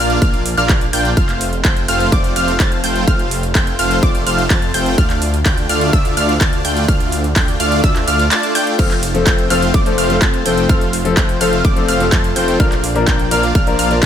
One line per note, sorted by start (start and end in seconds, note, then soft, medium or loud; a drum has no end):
0.00 0.19 A#1 loud
0.00 0.18 A#3 loud
0.00 0.18 D4 medium
0.00 0.18 F4 medium
0.00 0.18 D5 medium
0.00 0.18 F5 loud
0.00 0.18 F6 loud
0.10 closed hi-hat soft
0.22 0.55 A#1 loud
0.22 0.43 A#3 medium
0.22 0.43 D4 medium
0.22 0.43 F4 medium
0.22 0.43 D5 medium
0.22 0.43 F5 loud
0.22 0.43 F6 medium
0.22 kick loud
0.22 closed hi-hat medium
0.34 closed hi-hat soft
0.46 open hi-hat loud
0.57 0.91 A#1 medium
0.57 0.84 A#3 loud
0.57 0.84 D4 medium
0.57 0.84 F4 medium
0.57 0.84 D5 medium
0.57 0.84 F5 loud
0.57 0.84 F6 loud
0.57 closed hi-hat soft
0.69 kick loud
0.69 clap loud
0.69 closed hi-hat medium
0.81 closed hi-hat soft
0.93 1.15 A#1 loud
0.93 1.10 A#3 medium
0.93 1.10 D4 medium
0.93 1.10 F4 medium
0.93 1.10 D5 medium
0.93 1.10 G5 loud
0.93 1.10 G6 medium
0.93 open hi-hat loud
1.05 closed hi-hat soft
1.17 1.62 F1 loud
1.17 1.43 A3 medium
1.17 1.43 C4 medium
1.17 1.43 F4 medium
1.17 1.43 C5 medium
1.17 1.43 F5 medium
1.17 1.43 F6 medium
1.17 kick loud
1.17 closed hi-hat medium
1.29 clap soft
1.29 closed hi-hat soft
1.41 open hi-hat loud
1.53 closed hi-hat soft
1.65 1.86 F1 loud
1.65 1.86 A3 medium
1.65 1.86 C4 medium
1.65 1.86 F4 medium
1.65 1.86 C5 medium
1.65 1.86 G5 medium
1.65 1.86 G6 medium
1.65 kick loud
1.65 clap loud
1.65 closed hi-hat medium
1.77 closed hi-hat soft
1.88 2.10 F1 medium
1.88 2.09 A3 loud
1.88 2.09 C4 medium
1.88 2.09 F4 medium
1.88 2.09 C5 medium
1.88 2.09 F5 loud
1.88 2.09 F6 loud
1.88 open hi-hat loud
2.00 closed hi-hat soft
2.12 2.34 F1 loud
2.12 2.33 A3 medium
2.12 2.33 C4 medium
2.12 2.33 F4 medium
2.12 2.33 C5 medium
2.12 2.33 D5 loud
2.12 2.33 D6 medium
2.12 kick loud
2.12 closed hi-hat medium
2.24 closed hi-hat soft
2.36 2.57 F1 medium
2.36 2.52 A3 medium
2.36 2.52 C4 medium
2.36 2.52 F4 medium
2.36 2.52 C5 medium
2.36 2.52 F5 medium
2.36 2.52 F6 medium
2.36 open hi-hat loud
2.48 closed hi-hat soft
2.60 2.81 F1 loud
2.60 2.81 A3 medium
2.60 2.81 C4 medium
2.60 2.81 F4 medium
2.60 2.81 C5 medium
2.60 2.81 A5 medium
2.60 2.81 A6 medium
2.60 kick loud
2.60 clap loud
2.60 closed hi-hat medium
2.72 closed hi-hat soft
2.84 3.05 F1 medium
2.84 3.04 A3 medium
2.84 3.04 C4 medium
2.84 3.04 F4 medium
2.84 3.04 C5 medium
2.84 3.04 G5 medium
2.84 3.04 G6 medium
2.84 open hi-hat loud
2.96 closed hi-hat soft
3.07 3.53 F1 loud
3.07 3.34 A3 medium
3.07 3.34 C4 medium
3.07 3.34 F4 medium
3.07 3.34 C5 medium
3.07 3.34 F5 medium
3.07 3.34 F6 medium
3.07 kick loud
3.07 closed hi-hat medium
3.19 closed hi-hat soft
3.31 open hi-hat loud
3.43 closed hi-hat soft
3.55 3.77 F1 medium
3.55 3.76 A3 medium
3.55 3.76 C4 medium
3.55 3.76 F4 medium
3.55 3.76 C5 medium
3.55 3.76 G5 medium
3.55 3.76 G6 medium
3.55 kick loud
3.55 clap loud
3.55 closed hi-hat medium
3.67 closed hi-hat soft
3.79 4.00 F1 medium
3.79 3.99 A3 medium
3.79 3.99 C4 medium
3.79 3.99 F4 medium
3.79 3.99 C5 medium
3.79 3.99 F5 loud
3.79 3.99 F6 loud
3.79 open hi-hat loud
3.91 closed hi-hat soft
4.03 4.24 F1 loud
4.03 4.24 A3 medium
4.03 4.24 C4 medium
4.03 4.24 F4 medium
4.03 4.24 C5 medium
4.03 4.24 D5 medium
4.03 4.24 D6 medium
4.03 kick loud
4.03 closed hi-hat medium
4.15 closed hi-hat soft
4.27 4.48 F1 medium
4.27 4.43 A3 medium
4.27 4.43 C4 medium
4.27 4.43 F4 medium
4.27 4.43 C5 medium
4.27 4.43 F5 loud
4.27 4.43 F6 medium
4.27 open hi-hat loud
4.38 closed hi-hat soft
4.50 4.72 F2 loud
4.50 4.71 A3 medium
4.50 4.71 C4 medium
4.50 4.71 F4 medium
4.50 4.71 C5 medium
4.50 4.71 A5 medium
4.50 4.71 A6 medium
4.50 kick loud
4.50 clap loud
4.50 closed hi-hat medium
4.62 closed hi-hat soft
4.74 4.96 F1 loud
4.74 4.94 A3 medium
4.74 4.94 C4 medium
4.74 4.94 F4 medium
4.74 4.94 C5 medium
4.74 4.94 G5 medium
4.74 4.94 G6 medium
4.74 open hi-hat loud
4.86 closed hi-hat soft
4.98 5.43 D2 loud
4.98 5.24 A3 medium
4.98 5.24 D4 medium
4.98 5.24 F4 medium
4.98 5.24 D5 medium
4.98 5.24 F5 medium
4.98 5.24 F6 medium
4.98 kick loud
4.98 closed hi-hat medium
5.10 clap soft
5.10 closed hi-hat soft
5.22 open hi-hat medium
5.34 closed hi-hat soft
5.46 5.67 D2 loud
5.46 5.67 A3 medium
5.46 5.67 D4 medium
5.46 5.67 F4 medium
5.46 5.67 D5 medium
5.46 5.67 G5 medium
5.46 5.67 G6 medium
5.46 kick loud
5.46 clap loud
5.46 closed hi-hat medium
5.58 closed hi-hat soft
5.69 5.91 D2 loud
5.69 5.90 A3 loud
5.69 5.90 D4 medium
5.69 5.90 F4 medium
5.69 5.90 D5 medium
5.69 5.90 F5 loud
5.69 5.90 F6 loud
5.69 open hi-hat loud
5.81 closed hi-hat soft
5.93 6.15 D2 loud
5.93 6.14 A3 medium
5.93 6.14 D4 medium
5.93 6.14 F4 medium
5.93 6.14 D5 medium
5.93 6.14 E5 loud
5.93 6.14 E6 loud
5.93 kick loud
5.93 closed hi-hat medium
6.05 closed hi-hat soft
6.17 6.38 D2 loud
6.17 6.33 A3 medium
6.17 6.33 D4 medium
6.17 6.33 F4 medium
6.17 6.33 D5 medium
6.17 6.33 F5 medium
6.17 6.33 F6 medium
6.17 open hi-hat loud
6.29 closed hi-hat soft
6.41 6.62 D2 loud
6.41 6.62 A3 medium
6.41 6.62 D4 medium
6.41 6.62 F4 medium
6.41 6.62 D5 medium
6.41 6.62 A5 medium
6.41 6.62 A6 medium
6.41 kick loud
6.41 clap loud
6.41 closed hi-hat medium
6.53 closed hi-hat soft
6.65 6.86 D2 medium
6.65 6.85 A3 medium
6.65 6.85 D4 medium
6.65 6.85 F4 medium
6.65 6.85 D5 medium
6.65 6.85 G5 medium
6.65 6.85 G6 medium
6.65 open hi-hat loud
6.77 closed hi-hat soft
6.88 7.34 D2 loud
6.88 7.15 A3 medium
6.88 7.15 D4 medium
6.88 7.15 F4 medium
6.88 7.15 D5 medium
6.88 7.15 F5 medium
6.88 7.15 F6 medium
6.88 kick loud
6.88 closed hi-hat medium
7.00 closed hi-hat soft
7.12 open hi-hat loud
7.24 closed hi-hat soft
7.36 7.57 D2 medium
7.36 7.57 A3 medium
7.36 7.57 D4 medium
7.36 7.57 F4 medium
7.36 7.57 D5 medium
7.36 7.57 G5 medium
7.36 7.57 G6 medium
7.36 kick loud
7.36 clap loud
7.36 closed hi-hat medium
7.48 closed hi-hat soft
7.60 7.81 D2 loud
7.60 7.80 A3 loud
7.60 7.80 D4 medium
7.60 7.80 F4 medium
7.60 7.80 D5 medium
7.60 7.80 F5 loud
7.60 7.80 F6 loud
7.60 open hi-hat loud
7.72 closed hi-hat soft
7.84 8.05 D2 loud
7.84 8.05 A3 medium
7.84 8.05 D4 medium
7.84 8.05 F4 medium
7.84 8.05 D5 medium
7.84 8.05 E5 loud
7.84 8.05 E6 loud
7.84 kick loud
7.84 closed hi-hat medium
7.96 clap soft
7.96 closed hi-hat soft
8.07 8.29 D2 loud
8.07 8.24 A3 medium
8.07 8.24 D4 medium
8.07 8.24 F4 medium
8.07 8.24 D5 medium
8.07 8.24 F5 loud
8.07 8.24 F6 medium
8.07 open hi-hat loud
8.19 closed hi-hat soft
8.31 8.52 A3 medium
8.31 8.52 D4 medium
8.31 8.52 F4 medium
8.31 8.52 D5 medium
8.31 8.52 A5 medium
8.31 8.52 A6 medium
8.31 clap loud
8.31 closed hi-hat medium
8.43 closed hi-hat soft
8.55 8.75 A3 medium
8.55 8.75 D4 medium
8.55 8.75 F4 medium
8.55 8.75 D5 medium
8.55 8.75 G5 medium
8.55 8.75 G6 medium
8.55 open hi-hat loud
8.67 closed hi-hat soft
8.78 9.24 F1 loud
8.78 8.90 F3 medium
8.78 8.90 A3 medium
8.78 9.05 A3 medium
8.78 9.05 C4 medium
8.78 8.90 C4 medium
8.78 9.05 F4 medium
8.78 8.90 A4 medium
8.78 9.05 C5 medium
8.78 9.05 F5 medium
8.78 9.05 F6 medium
8.78 kick loud
8.78 closed hi-hat medium
8.78 crash medium
8.91 clap soft
8.91 closed hi-hat soft
9.03 open hi-hat loud
9.14 9.47 F3 medium
9.14 9.47 A3 medium
9.14 9.48 C4 medium
9.14 9.48 A4 loud
9.14 closed hi-hat soft
9.27 9.48 F1 loud
9.27 9.48 A3 medium
9.27 9.48 C4 medium
9.27 9.48 F4 medium
9.27 9.48 C5 medium
9.27 9.48 G5 medium
9.27 9.47 G6 medium
9.27 kick loud
9.27 clap loud
9.27 closed hi-hat medium
9.38 closed hi-hat soft
9.50 9.72 F1 loud
9.50 9.61 F3 loud
9.50 9.61 A3 medium
9.50 9.71 A3 loud
9.50 9.71 C4 medium
9.50 9.61 C4 medium
9.50 9.71 F4 medium
9.50 9.62 A4 loud
9.50 9.71 C5 medium
9.50 9.71 F5 loud
9.50 9.71 F6 loud
9.50 open hi-hat loud
9.62 closed hi-hat soft
9.74 9.96 F1 medium
9.74 9.95 A3 medium
9.74 9.95 C4 medium
9.74 9.95 F4 medium
9.74 9.95 C5 medium
9.74 9.95 D5 medium
9.74 9.95 D6 medium
9.74 kick loud
9.74 closed hi-hat medium
9.85 10.07 F3 loud
9.85 10.07 A3 medium
9.85 10.07 C4 medium
9.85 10.07 A4 loud
9.85 closed hi-hat soft
9.98 10.19 F1 loud
9.98 10.14 A3 medium
9.98 10.14 C4 medium
9.98 10.14 F4 medium
9.98 10.14 C5 medium
9.98 10.14 F5 loud
9.98 10.14 F6 loud
9.98 open hi-hat loud
10.09 10.42 F3 medium
10.09 10.43 A3 medium
10.09 10.43 C4 medium
10.09 10.43 A4 loud
10.09 closed hi-hat soft
10.22 10.43 F1 loud
10.22 10.43 A3 medium
10.22 10.43 C4 medium
10.22 10.43 F4 medium
10.22 10.43 C5 medium
10.22 10.43 A5 medium
10.22 10.43 A6 medium
10.22 kick loud
10.22 clap loud
10.22 closed hi-hat medium
10.34 closed hi-hat soft
10.45 10.67 F1 medium
10.45 10.66 F3 medium
10.45 10.66 A3 medium
10.45 10.66 C4 medium
10.45 10.67 C4 medium
10.45 10.66 F4 medium
10.45 10.67 A4 medium
10.45 10.66 C5 medium
10.45 10.66 G5 medium
10.45 10.66 G6 medium
10.45 open hi-hat loud
10.58 closed hi-hat soft
10.69 11.15 F1 loud
10.69 10.80 F3 medium
10.69 10.80 A3 medium
10.69 10.96 A3 medium
10.69 10.96 C4 medium
10.69 10.80 C4 medium
10.69 10.96 F4 medium
10.69 10.81 A4 loud
10.69 10.96 C5 medium
10.69 10.96 F5 medium
10.69 10.96 F6 medium
10.69 kick loud
10.69 closed hi-hat medium
10.81 closed hi-hat soft
10.93 open hi-hat loud
11.04 11.38 F3 medium
11.04 11.38 A3 medium
11.04 11.38 C4 medium
11.04 11.38 A4 loud
11.04 closed hi-hat soft
11.17 11.38 F1 medium
11.17 11.38 A3 medium
11.17 11.38 C4 medium
11.17 11.38 F4 medium
11.17 11.38 C5 medium
11.17 11.38 G5 medium
11.17 11.38 G6 medium
11.17 kick loud
11.17 clap loud
11.17 closed hi-hat medium
11.29 closed hi-hat soft
11.40 11.62 F1 loud
11.40 11.51 F3 loud
11.40 11.52 A3 medium
11.40 11.61 A3 medium
11.40 11.61 C4 medium
11.40 11.52 C4 medium
11.40 11.61 F4 medium
11.40 11.52 A4 loud
11.40 11.61 C5 medium
11.40 11.61 F5 loud
11.40 11.61 F6 loud
11.40 open hi-hat loud
11.53 closed hi-hat soft
11.65 11.86 F1 loud
11.65 11.86 A3 medium
11.65 11.86 C4 medium
11.65 11.86 F4 medium
11.65 11.86 C5 medium
11.65 11.86 D5 loud
11.65 11.86 D6 medium
11.65 kick loud
11.65 closed hi-hat medium
11.76 11.97 F3 medium
11.76 11.97 A3 medium
11.76 11.98 C4 medium
11.76 11.98 A4 loud
11.76 closed hi-hat soft
11.88 12.10 F1 loud
11.88 12.05 A3 medium
11.88 12.05 C4 medium
11.88 12.05 F4 medium
11.88 12.05 C5 medium
11.88 12.05 F5 loud
11.88 12.05 F6 medium
11.88 open hi-hat loud
12.00 12.33 F3 medium
12.00 12.33 A3 medium
12.00 12.33 C4 medium
12.00 12.33 A4 medium
12.00 closed hi-hat soft
12.12 12.34 F2 loud
12.12 12.33 A3 medium
12.12 12.33 C4 medium
12.12 12.33 F4 medium
12.12 12.33 C5 medium
12.12 12.33 A5 medium
12.12 12.33 A6 medium
12.12 kick loud
12.12 clap loud
12.12 closed hi-hat medium
12.24 closed hi-hat soft
12.35 12.57 F1 medium
12.35 12.57 F3 medium
12.35 12.57 A3 medium
12.35 12.56 A3 medium
12.35 12.56 C4 medium
12.35 12.57 C4 medium
12.35 12.56 F4 medium
12.35 12.57 A4 medium
12.35 12.56 C5 medium
12.35 12.56 G5 medium
12.35 12.56 G6 medium
12.35 open hi-hat loud
12.48 closed hi-hat soft
12.59 13.05 A#1 loud
12.59 12.70 F3 medium
12.59 12.71 A#3 medium
12.59 12.86 A#3 medium
12.59 12.86 D4 medium
12.59 12.71 D4 medium
12.59 12.86 F4 medium
12.59 12.71 A#4 medium
12.59 12.86 D5 medium
12.59 12.86 F5 medium
12.59 12.86 F6 medium
12.59 kick loud
12.59 closed hi-hat medium
12.72 clap soft
12.72 closed hi-hat soft
12.84 open hi-hat loud
12.95 13.28 F3 loud
12.95 13.28 A#3 medium
12.95 13.29 D4 medium
12.95 13.29 A#4 loud
12.95 closed hi-hat soft
13.07 13.29 A#1 loud
13.07 13.28 A#3 medium
13.07 13.28 D4 medium
13.07 13.28 F4 medium
13.07 13.28 D5 medium
13.07 13.28 G5 medium
13.07 13.28 G6 medium
13.07 kick loud
13.07 clap loud
13.07 closed hi-hat medium
13.19 closed hi-hat soft
13.31 13.53 A#1 loud
13.31 13.42 F3 loud
13.31 13.42 A#3 medium
13.31 13.52 A#3 loud
13.31 13.52 D4 medium
13.31 13.42 D4 medium
13.31 13.52 F4 medium
13.31 13.43 A#4 loud
13.31 13.52 D5 medium
13.31 13.52 F5 loud
13.31 13.52 F6 loud
13.31 open hi-hat loud
13.43 closed hi-hat soft
13.55 13.77 A#1 loud
13.55 13.76 A#3 medium
13.55 13.76 D4 medium
13.55 13.76 F4 medium
13.55 13.76 D5 medium
13.55 13.76 F5 medium
13.55 13.76 F6 loud
13.55 kick loud
13.55 closed hi-hat medium
13.66 13.88 F3 medium
13.66 13.88 A#3 medium
13.66 13.88 D4 medium
13.66 13.88 A#4 loud
13.66 closed hi-hat soft
13.79 14.00 A#1 loud
13.79 13.95 A#3 medium
13.79 13.95 D4 medium
13.79 13.95 F4 medium
13.79 13.95 D5 medium
13.79 13.95 F5 medium
13.79 13.95 F6 medium
13.79 open hi-hat loud
13.90 14.06 F3 medium
13.90 14.06 A#3 medium
13.90 14.06 D4 medium
13.90 14.06 A#4 medium
13.90 closed hi-hat soft
14.03 14.06 A#1 loud
14.03 14.06 A#3 medium
14.03 14.06 D4 medium
14.03 14.06 F4 medium
14.03 14.06 D5 medium
14.03 14.06 A#5 medium
14.03 14.06 A#6 medium
14.03 kick loud
14.03 clap loud
14.03 closed hi-hat medium